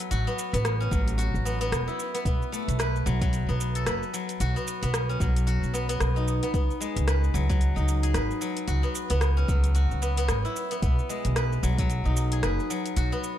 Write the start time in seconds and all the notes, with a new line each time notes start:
Already playing: F#3 A3 B3 E4 A4 B4
0.01 shaker
0.11 A1 F#4, closed hi-hat, shaker
0.27 B3, shaker
0.39 shaker
0.53 A1 B3, closed hi-hat, shaker
0.65 cross-stick, closed hi-hat, shaker
0.80 C#4, shaker
0.91 A1 F#3, kick, shaker
1.08 closed hi-hat, shaker
1.18 F#4, closed hi-hat, shaker
1.34 A1, shaker
1.45 B3, shaker
1.61 B3, closed hi-hat, shaker
1.72 E1, cross-stick, closed hi-hat, shaker
1.88 E4, shaker
2.00 shaker
2.14 B3, closed hi-hat, shaker
2.25 B1 B3, kick, closed hi-hat, shaker
2.42 shaker
2.52 A3, shaker
2.68 B1, closed hi-hat, shaker
2.79 B4, cross-stick, closed hi-hat, shaker
2.96 shaker
3.06 B1 F#3, shaker
3.21 F#3, kick, closed hi-hat, shaker
3.33 closed hi-hat, shaker
3.49 B1 B3, shaker
3.61 shaker
3.75 A4, closed hi-hat, shaker
3.86 F#1 B4, cross-stick, closed hi-hat, shaker
4.03 shaker
4.13 F#3, shaker
4.29 closed hi-hat, shaker
4.40 B1 F#4, closed hi-hat, shaker
4.56 B3, shaker
4.67 shaker
4.82 B1 B3, closed hi-hat, shaker
4.94 cross-stick, closed hi-hat, shaker
5.09 C#4, shaker
5.20 B1 F#3, kick, shaker
5.36 closed hi-hat, shaker
5.47 F#4, closed hi-hat, shaker
5.63 B1, shaker
5.74 B3, shaker
5.89 B3, closed hi-hat, shaker
6.00 B1, cross-stick, closed hi-hat, shaker
6.16 D#4, shaker
6.28 shaker
6.43 B3, closed hi-hat, shaker
6.54 C#2 B3, kick, closed hi-hat, shaker
6.71 shaker
6.80 G#3, shaker
6.96 C#2, closed hi-hat, shaker
7.08 B4, cross-stick, closed hi-hat, shaker
7.24 shaker
7.34 C#2 F#3, shaker
7.49 F#3, kick, closed hi-hat, shaker
7.61 closed hi-hat, shaker
7.76 C#2 D#4, shaker
7.88 shaker
8.03 G#4, closed hi-hat, shaker
8.14 G#1 B4, cross-stick, closed hi-hat, shaker
8.31 shaker
8.41 F#3, shaker
8.57 closed hi-hat, shaker
8.68 C#2 F#4, closed hi-hat, shaker
8.83 B3, shaker
8.95 shaker
9.10 C#2 B3, closed hi-hat, shaker
9.21 cross-stick, closed hi-hat, shaker
9.37 C#4, shaker
9.48 C#2 F#3, kick, shaker
9.64 closed hi-hat, shaker
9.75 F#4, closed hi-hat, shaker
9.91 C#2, shaker
10.02 B3, shaker
10.17 B3, closed hi-hat, shaker
10.28 G#1, cross-stick, closed hi-hat, shaker
10.45 E4, shaker
10.56 shaker
10.71 B3, closed hi-hat, shaker
10.82 B1 B3, kick, closed hi-hat, shaker
10.99 shaker
11.09 G#3, shaker
11.25 B1, closed hi-hat, shaker
11.36 B4, cross-stick, closed hi-hat, shaker
11.53 shaker
11.63 B1 F#3, shaker
11.78 F#3, kick, closed hi-hat, shaker
11.90 closed hi-hat, shaker
12.05 B1 D#4, shaker
12.17 shaker
12.32 G#4, closed hi-hat, shaker
12.43 F#1 B4, cross-stick, closed hi-hat, shaker
12.60 shaker
12.70 F#3, shaker
12.86 closed hi-hat, shaker
12.96 B1 F#4, closed hi-hat, shaker
13.12 B3, shaker
13.24 shaker